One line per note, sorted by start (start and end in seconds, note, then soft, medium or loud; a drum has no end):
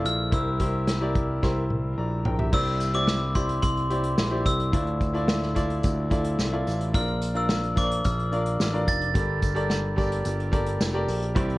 0.00 0.31 E4 medium
0.00 0.34 F4 medium
0.00 0.34 A4 medium
0.00 0.33 C5 medium
0.00 0.23 D5 medium
0.05 0.30 A#1 medium
0.05 0.33 F6 medium
0.05 closed hi-hat medium
0.31 1.38 C2 medium
0.31 1.11 G2 medium
0.31 0.53 E4 medium
0.31 0.53 G4 medium
0.31 0.54 A#4 medium
0.31 0.54 C5 medium
0.31 0.84 E6 medium
0.31 kick loud
0.31 closed hi-hat medium
0.59 0.92 E4 medium
0.59 0.92 G4 medium
0.59 0.92 A#4 medium
0.59 0.93 C5 medium
0.59 kick medium
0.59 closed hi-hat medium
0.87 snare medium
0.87 closed hi-hat medium
1.00 1.33 E4 medium
1.00 1.33 G4 medium
1.00 1.33 A#4 medium
1.00 1.34 D5 medium
1.15 kick medium
1.15 closed hi-hat medium
1.42 1.94 C2 medium
1.42 1.64 E4 medium
1.42 1.64 G4 medium
1.42 1.64 A#4 medium
1.42 1.64 C5 medium
1.42 kick medium
1.42 snare soft
1.70 high tom medium
1.98 2.23 A#1 medium
1.98 2.24 D5 soft
1.98 2.24 A#5 medium
2.25 2.51 A#1 medium
2.25 2.39 A#4 soft
2.25 2.38 G5 medium
2.25 floor tom medium
2.39 2.51 G4 medium
2.39 2.65 E5 medium
2.39 floor tom medium
2.52 3.59 C2 loud
2.52 3.31 G2 medium
2.52 2.85 E4 medium
2.52 2.85 G4 medium
2.52 2.85 C5 medium
2.52 2.85 D5 medium
2.52 2.96 E6 loud
2.52 kick medium
2.52 crash medium
2.52 tambourine soft
2.66 closed hi-hat soft
2.80 closed hi-hat medium
2.80 tambourine soft
2.93 3.26 E4 medium
2.93 3.26 G4 medium
2.93 3.27 C5 medium
2.93 3.27 D5 medium
2.93 3.37 D6 medium
2.93 closed hi-hat soft
3.07 snare medium
3.07 tambourine medium
3.35 3.78 E4 medium
3.35 3.79 G4 medium
3.35 3.79 C5 medium
3.35 3.79 D5 medium
3.35 3.62 C6 medium
3.35 kick medium
3.35 closed hi-hat medium
3.35 tambourine soft
3.49 closed hi-hat medium
3.63 4.15 C2 medium
3.63 4.48 C6 medium
3.63 kick medium
3.63 closed hi-hat medium
3.63 tambourine soft
3.77 closed hi-hat soft
3.90 4.23 E4 medium
3.90 4.23 G4 medium
3.90 4.23 C5 medium
3.90 4.24 D5 medium
3.90 closed hi-hat medium
4.04 closed hi-hat medium
4.18 4.44 A#1 medium
4.18 snare loud
4.18 tambourine medium
4.31 4.64 E4 medium
4.31 4.64 G4 medium
4.31 4.64 C5 medium
4.31 4.65 D5 medium
4.46 4.72 C2 medium
4.46 5.25 E6 medium
4.46 kick medium
4.46 closed hi-hat medium
4.46 tambourine soft
4.60 closed hi-hat soft
4.72 5.80 D2 medium
4.72 5.52 A2 medium
4.72 5.05 E4 medium
4.72 5.06 F4 medium
4.72 5.06 A4 medium
4.72 5.06 D5 medium
4.72 kick loud
4.72 closed hi-hat medium
4.87 closed hi-hat soft
5.01 kick medium
5.01 closed hi-hat medium
5.01 tambourine soft
5.13 5.47 E4 medium
5.13 5.47 F4 medium
5.13 5.47 A4 medium
5.13 5.47 D5 medium
5.13 closed hi-hat soft
5.28 snare loud
5.28 tambourine medium
5.43 snare soft
5.55 5.99 E4 medium
5.55 5.99 F4 medium
5.55 5.99 A4 medium
5.55 6.00 D5 loud
5.55 kick medium
5.55 closed hi-hat medium
5.55 tambourine soft
5.70 closed hi-hat soft
5.83 6.35 D2 medium
5.83 kick medium
5.83 closed hi-hat medium
5.83 tambourine soft
6.10 6.43 E4 medium
6.10 6.43 F4 medium
6.10 6.44 A4 medium
6.10 6.44 D5 medium
6.10 kick medium
6.10 closed hi-hat medium
6.10 tambourine soft
6.25 closed hi-hat medium
6.39 6.65 C2 medium
6.39 snare loud
6.39 tambourine medium
6.52 6.85 E4 medium
6.52 6.85 F4 medium
6.52 6.85 A4 medium
6.52 6.86 D5 medium
6.52 closed hi-hat soft
6.67 6.92 A1 medium
6.67 closed hi-hat medium
6.67 tambourine soft
6.81 closed hi-hat soft
6.93 8.01 A#1 loud
6.93 7.26 D4 medium
6.93 7.26 F4 medium
6.93 7.27 A#4 medium
6.93 7.27 D5 medium
6.93 7.33 F6 medium
6.93 kick loud
6.93 closed hi-hat medium
7.08 closed hi-hat soft
7.22 closed hi-hat medium
7.22 tambourine soft
7.35 7.68 D4 medium
7.35 7.68 F4 medium
7.35 7.68 A#4 medium
7.35 7.68 D5 medium
7.35 7.75 E6 medium
7.35 closed hi-hat soft
7.49 snare loud
7.49 tambourine medium
7.64 closed hi-hat soft
7.76 8.20 D4 medium
7.76 8.20 F4 medium
7.76 8.20 A#4 medium
7.76 7.84 C5 medium
7.76 8.06 D6 medium
7.76 kick medium
7.76 closed hi-hat medium
7.76 tambourine medium
7.84 8.24 D5 medium
7.91 closed hi-hat medium
8.04 8.56 A#1 medium
8.04 8.90 F6 medium
8.04 kick medium
8.04 closed hi-hat medium
8.04 tambourine soft
8.19 closed hi-hat soft
8.31 8.64 D4 medium
8.31 8.64 F4 medium
8.31 8.65 A#4 medium
8.31 8.65 D5 medium
8.31 closed hi-hat medium
8.45 closed hi-hat medium
8.59 8.85 A1 medium
8.59 snare loud
8.59 tambourine medium
8.72 9.05 D4 medium
8.72 9.06 F4 medium
8.72 9.06 A#4 medium
8.72 9.06 D5 medium
8.72 closed hi-hat soft
8.87 9.15 F1 medium
8.87 9.66 A6 loud
8.87 kick medium
8.87 closed hi-hat medium
8.87 tambourine medium
9.01 closed hi-hat soft
9.14 10.21 G1 loud
9.14 9.94 G2 medium
9.14 9.93 D3 medium
9.14 9.47 G4 medium
9.14 9.47 A4 medium
9.14 9.47 A#4 medium
9.14 9.47 D5 medium
9.14 kick loud
9.14 closed hi-hat medium
9.14 tambourine soft
9.42 kick medium
9.42 closed hi-hat medium
9.42 tambourine medium
9.55 9.88 G4 medium
9.55 9.88 A4 medium
9.55 9.88 A#4 medium
9.55 9.89 D5 loud
9.55 closed hi-hat soft
9.70 snare medium
9.70 tambourine medium
9.85 closed hi-hat soft
9.96 10.40 G4 medium
9.96 10.40 A4 medium
9.96 10.41 A#4 medium
9.96 10.41 D5 medium
9.96 kick medium
9.96 closed hi-hat medium
9.96 tambourine medium
10.12 closed hi-hat soft
10.25 10.77 G1 medium
10.25 closed hi-hat medium
10.25 tambourine soft
10.40 closed hi-hat soft
10.52 10.85 G4 medium
10.52 10.85 A4 medium
10.52 10.85 A#4 medium
10.52 10.85 D5 medium
10.52 kick medium
10.52 closed hi-hat medium
10.52 tambourine soft
10.66 closed hi-hat medium
10.80 11.06 F1 medium
10.80 snare loud
10.80 tambourine medium
10.93 11.26 G4 medium
10.93 11.27 A4 medium
10.93 11.27 A#4 medium
10.93 11.27 D5 medium
11.08 11.34 A#1 medium
11.08 open hi-hat medium
11.08 tambourine soft
11.23 closed hi-hat soft
11.35 11.58 C2 loud
11.35 11.58 G2 medium
11.35 11.58 C3 medium
11.35 11.58 E3 medium
11.35 11.58 G3 medium
11.35 11.58 C4 medium
11.35 11.58 D4 medium
11.35 11.58 E4 medium
11.35 11.58 G4 medium
11.35 11.58 C5 medium
11.35 11.58 D5 medium
11.35 kick loud
11.35 closed hi-hat medium
11.35 tambourine soft
11.50 closed hi-hat soft